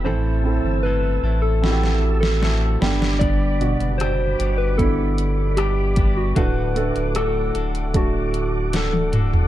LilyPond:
<<
  \new Staff \with { instrumentName = "Tonewheel organ" } { \time 4/4 \key g \major \tempo 4 = 76 << { <e'' e'''>2.~ <e'' e'''>8 <d'' d'''>8~ | <d'' d'''>1~ | <d'' d'''>1 | } \\ { <a' a''>2.~ <a' a''>8 <g b''>8~ | <g b''>1 | <a' fis''>1 | } >> }
  \new Staff \with { instrumentName = "Soft synth lead" } { \time 4/4 \key g \major c''4 b'8. a'4 a'16 a'8. r16 | d''4 c''8. b'16 a'4 g'8. fis'16 | b'4 a'4 fis'4 a'4 | }
  \new Staff \with { instrumentName = "Clean electric guitar" } { \time 4/4 \key g \major <a, e a c' e' a'>4 <a c' e' a'>8 <a c' e' a'>4. <a c' e' a'>8 <g b d' g'>8 | <g, d g b d' g'>4 <g d' g'>8 <g b d' g'>4. <g b d' g'>8 <g b d' g'>8 | <d a d' fis' a'>4 <a d' fis' a'>8 <d' fis' a'>4. <a d' fis' a'>8 <d' fis' a'>8 | }
  \new Staff \with { instrumentName = "Grand piano" } { \time 4/4 \key g \major <c' e' a'>8 <c' e' a'>4. <c' e' fis' g'>4. <b d' g'>8~ | <b d' g'>8 <b, d' fis'>4. <b d' e'>2 | <a d' fis'>8 <a d' a'>4. <a d' a'>2 | }
  \new Staff \with { instrumentName = "Grand piano" } { \clef bass \time 4/4 \key g \major <a, e>4. r2 <g, d>8~ | <g, d>4 r2. | a,4. r2 r8 | }
  \new Staff \with { instrumentName = "Sub bass" } { \clef bass \time 4/4 \key g \major a,,8. g,,8. a,,2 g,,8~ | g,,8. fis,,8. g,,2~ g,,8 | d,,8. d,,8. d,,2~ d,,8 | }
  \new DrumStaff \with { instrumentName = "Drums" } \drummode { \time 4/4 r4 r4 sn16 sn8 sn16 sn8 sn16 sn16 | <hh bd>8 hh16 hh16 <hh ss>8 hh8 <hh bd>8 hh8 <hh ss>8 <hh bd>8 | <hh bd>8 hh16 hh16 <hh ss>8 hh16 hh16 <hh bd>8 hh8 <hh sn>16 tommh16 <hh toml>16 tomfh16 | }
>>